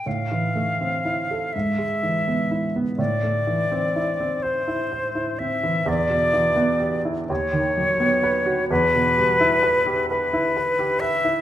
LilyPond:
<<
  \new Staff \with { instrumentName = "Flute" } { \time 6/8 \key a \minor \tempo 4. = 42 f''4. e''4. | d''4. c''4 e''8 | d''4 r8 cis''4. | b'4. b'4 e''8 | }
  \new Staff \with { instrumentName = "Grand piano" } { \time 6/8 \key a \minor a,16 e16 a16 c'16 e'16 a'16 gis,16 gis16 e16 b16 e'16 b16 | a,16 a16 e16 c'16 e'16 c'16 c''16 e'16 c''16 e'16 c'16 e16 | e,16 b,16 e16 b16 g'16 e'16 dis,16 dis16 fis16 b16 b'16 fis'16 | e,16 b,16 g16 e'16 b'16 g'16 b'16 e'16 b'16 g'16 b'16 e'16 | }
>>